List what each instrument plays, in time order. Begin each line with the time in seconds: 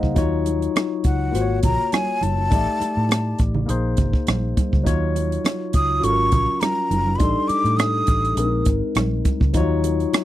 Already playing: tine electric piano A#3 D#4 G#4 C5 D#5 F5 F#5 A#5
0.03 fingered electric bass C#2, kick, high conga
0.15 fingered electric bass D#2, tine electric piano F#3 D#4 F4 C#5, kick, closed hi-hat, muted conga
0.46 closed hi-hat, muted conga
0.62 closed hi-hat
0.76 cross-stick, closed hi-hat, high conga
1.04 fingered electric bass C#2, flute F#5, kick, closed hi-hat
1.31 fingered electric bass G#1, tine electric piano A#3 F4 F#4 C5, closed hi-hat
1.36 cross-stick
1.42 tine electric piano C#5
1.63 fingered electric bass A#1, flute A#5, kick, closed hi-hat, muted conga, low conga
1.92 flute G#5, cross-stick, closed hi-hat, high conga
2.21 fingered electric bass F#1, flute A5, closed hi-hat, high conga
2.37 high conga
2.48 fingered electric bass A1, tine electric piano G3 D#4 G4 D5, kick, closed hi-hat, muted conga
2.55 tine electric piano A3
2.80 muted fingered electric bass stroke, closed hi-hat, muted conga
2.97 fingered electric bass A2
3.09 cross-stick, closed hi-hat, high conga
3.38 fingered electric bass A1, kick, closed hi-hat
3.54 low conga
3.66 fingered electric bass A#1, tine electric piano A#3 D#4 G#4, closed hi-hat
3.70 tine electric piano C5
3.97 fingered electric bass G#1, kick, closed hi-hat, low conga
4.13 kick
4.27 fingered electric bass A#1, cross-stick, closed hi-hat, high conga
4.57 kick, closed hi-hat, high conga
4.72 fingered electric bass C#2, kick, high conga
4.83 fingered electric bass D#2, tine electric piano F#3 D#4 F4 C#5, kick, closed hi-hat, muted conga
5.16 closed hi-hat, muted conga
5.32 closed hi-hat
5.44 cross-stick, closed hi-hat, high conga
5.73 fingered electric bass C#2, flute D#6, kick, closed hi-hat
6.00 fingered electric bass G#1, tine electric piano F#3 C#4 F4 A4, closed hi-hat
6.04 flute C#6
6.10 tine electric piano A#4
6.32 fingered electric bass A#1, kick, closed hi-hat, low conga
6.60 flute A#5, cross-stick, closed hi-hat, high conga
6.90 fingered electric bass F#1, closed hi-hat, high conga
7.07 high conga
7.15 tine electric piano G3, flute B5 C6
7.19 fingered electric bass A1, tine electric piano D4 D#4 A4, kick, closed hi-hat, muted conga
7.48 flute D6, muted fingered electric bass stroke, closed hi-hat, muted conga
7.64 fingered electric bass A2, closed hi-hat
7.77 flute D#6, cross-stick, closed hi-hat, high conga
8.07 fingered electric bass A1, kick, closed hi-hat
8.25 closed hi-hat
8.35 fingered electric bass A#1, tine electric piano G#3 C4 D4 A#4, closed hi-hat
8.44 tine electric piano D#4
8.65 fingered electric bass G#1, kick, closed hi-hat
8.95 fingered electric bass A#1, cross-stick, closed hi-hat, high conga
9.25 kick, closed hi-hat, high conga
9.40 fingered electric bass C#2, kick, high conga
9.53 fingered electric bass D#2, tine electric piano F3 D#4 F4, kick, closed hi-hat, muted conga
9.57 tine electric piano F#3 C#5
9.84 closed hi-hat, muted conga
10.00 closed hi-hat
10.13 cross-stick, closed hi-hat, high conga